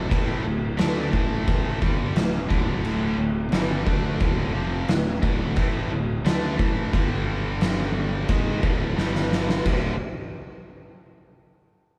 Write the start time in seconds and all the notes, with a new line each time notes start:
0.09 A1 A2 E3 A3, kick, crash
0.44 D1 D2 A2
0.77 D2 D3 A3 D4, snare, crash
1.12 A1 A2 E3 A3, kick
1.47 kick, crash
1.81 G1 G2 D3 G3, kick
2.14 D1 D2 A2, snare, crash
2.49 D1 D2 A2 D3, kick
2.85 crash
3.18 D1 D2 A2
3.52 G1 G2 D3 G3, snare, crash
3.86 D2 D3 A3 D4, kick
4.20 D1 D2 A2 D3, kick, crash
4.54 F1 F2 C3 F3
4.88 D1 D2 A2, snare, crash
5.22 D1 D2 A2 D3, kick
5.56 A1 A2 E3 A3, kick, crash
5.90 D1 D2 A2
6.25 D2 D3 A3 D4, snare, crash
6.58 A1 A2 E3 A3, kick
6.92 G1 G2 D3 G3, kick, crash
7.61 snare, crash
8.29 G#1 G#2 D#3 G#3, kick, crash
8.61 D1 D2 A2 D3, kick
8.95 G1 G2 D3 G3, snare
9.15 snare
9.33 snare
9.49 snare
9.64 D1 D2 A2 D3, kick, crash